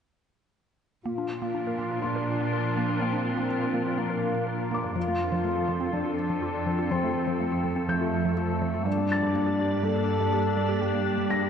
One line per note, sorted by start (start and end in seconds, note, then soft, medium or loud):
1.05 4.92 A#2 soft
1.05 4.92 F3 soft
1.05 1.13 A#3 medium
1.05 4.92 D4 medium
1.05 1.99 F4 soft
1.05 4.92 F4 medium
1.05 4.92 A#4 medium
1.18 1.25 D4 soft
1.42 1.49 A#3 medium
1.55 1.62 D4 soft
1.67 1.74 A#4 soft
1.79 1.86 A#3 medium
1.91 1.99 F4 soft
2.01 2.11 A#3 medium
2.01 2.98 D4 soft
2.01 3.45 C6 soft
2.16 2.23 A#4 soft
2.40 2.47 A#3 medium
2.52 2.60 A#4 soft
2.77 2.84 A#3 medium
2.90 2.97 A#4 soft
3.00 3.09 A#3 medium
3.00 3.98 C4 soft
3.13 3.20 D4 soft
3.38 3.45 A#3 medium
3.50 3.57 D4 soft
3.62 3.69 A#4 soft
3.74 3.81 A#3 medium
3.86 3.94 F4 soft
3.98 4.05 A#3 medium
3.98 4.46 A#3 soft
4.10 4.17 A#4 soft
4.35 4.42 A#3 medium
4.47 4.95 A#3 soft
4.47 4.54 A#4 soft
4.71 4.79 A#3 medium
4.71 6.15 D6 soft
4.84 4.91 A#4 soft
4.94 8.82 F2 soft
4.94 8.81 F3 medium
4.94 5.03 F3 medium
4.94 8.85 C4 medium
4.94 5.91 F4 medium
4.94 8.82 F4 medium
4.94 8.86 A4 medium
5.08 5.15 A3 soft
5.32 5.39 F3 medium
5.44 5.52 A3 soft
5.56 5.63 F4 soft
5.69 5.76 F3 medium
5.80 5.88 C4 soft
5.93 6.01 F3 medium
5.93 6.89 D4 medium
6.05 6.13 F4 soft
6.30 6.37 F3 medium
6.42 6.50 F4 soft
6.66 6.74 F3 medium
6.79 6.86 F4 soft
6.91 6.98 F3 medium
6.91 7.72 C4 medium
6.91 8.33 C6 soft
7.04 7.11 A3 soft
7.27 7.35 F3 medium
7.40 7.47 A3 soft
7.52 7.59 F4 soft
7.64 7.71 F3 medium
7.76 7.83 C4 soft
7.89 7.96 F3 medium
7.89 8.34 A3 medium
7.89 9.31 G6 soft
8.01 8.08 F4 soft
8.25 8.32 F3 medium
8.35 8.84 A3 medium
8.35 8.45 F4 soft
8.62 8.69 F3 medium
8.74 8.81 F4 soft
8.85 11.50 G2 soft
8.85 8.93 G3 medium
8.85 11.50 A#3 medium
8.85 9.83 D4 medium
8.85 11.50 D4 medium
8.85 11.50 G4 medium
8.85 11.50 D5 medium
8.98 9.05 A#3 soft
9.12 10.54 A6 soft
9.23 9.30 G3 medium
9.35 9.42 A#3 soft
9.46 9.54 G4 soft
9.59 9.67 G3 medium
9.71 9.79 D4 soft
9.83 9.91 G3 medium
9.83 10.81 A4 medium
9.96 10.03 G4 soft
10.20 10.28 G3 medium
10.33 10.40 G4 soft
10.57 10.64 G3 medium
10.69 10.76 G4 soft
10.81 10.89 G3 medium
10.81 11.50 G4 medium
10.94 11.01 A#3 soft
11.18 11.25 G3 medium
11.30 11.37 A#3 soft
11.30 11.50 A#6 soft
11.42 11.50 G4 soft